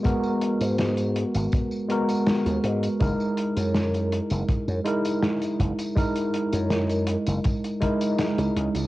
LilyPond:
<<
  \new Staff \with { instrumentName = "Tine electric piano" } { \time 4/4 \key fis \mixolydian \tempo 4 = 81 <gis b fis' ais'>2~ <gis b fis' ais'>8 <gis b fis' ais'>4. | <gis dis' e' ais'>2~ <gis dis' e' ais'>8 <gis dis' e' ais'>4. | <gis dis' e' ais'>2~ <gis dis' e' ais'>8 <gis dis' e' ais'>4. | }
  \new Staff \with { instrumentName = "Slap bass" } { \clef bass \time 4/4 \key fis \mixolydian r8. gis,8. r16 gis,,16 r4 r16 dis,16 gis,16 r16 | fis,,16 r8 fis,8. r16 fis,,16 r16 fis,16 r4 fis,,16 r16 | r8. fis,8. r16 fis,,16 r4 r16 cis,16 cis,16 cis,16 | }
  \new DrumStaff \with { instrumentName = "Drums" } \drummode { \time 4/4 <hh bd tamb>16 tamb16 hh16 <hh tamb>16 <hh sn tamb>16 <hh tamb>16 hh16 <hh tamb>16 <hh bd tamb>16 tamb16 hh16 <hh tamb>16 <hh sn tamb>16 <hh tamb>16 hh16 <hh tamb>16 | <hh bd tamb>16 tamb16 hh16 <hh tamb>16 <hh sn tamb>16 <hh tamb>16 hh16 <hh tamb>16 <hh bd tamb>16 tamb16 hh16 <hh tamb>16 <hh sn tamb>16 <hh tamb>16 <hh bd>16 <hh tamb>16 | <hh bd tamb>16 <hh tamb>16 hh16 <hh tamb>16 <hh sn tamb>16 <hh tamb>16 hh16 <hh tamb>16 <hh bd tamb>16 <hh tamb>16 <hh bd>16 <hh tamb>16 <hh sn tamb>16 <hh tamb>16 hh16 <hh tamb>16 | }
>>